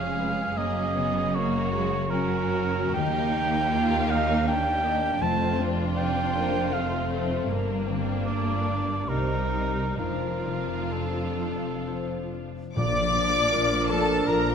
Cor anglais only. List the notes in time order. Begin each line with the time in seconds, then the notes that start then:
Already playing: F5
0.58 D#5
1.35 C#5
2.10 A#4
2.94 G5
4.11 F5
4.48 G5
5.22 A5
5.97 G5
6.73 F5
8.27 D5
9.09 A#4
9.98 A#4
10.93 A4
12.77 D5
13.90 A4
14.28 A#4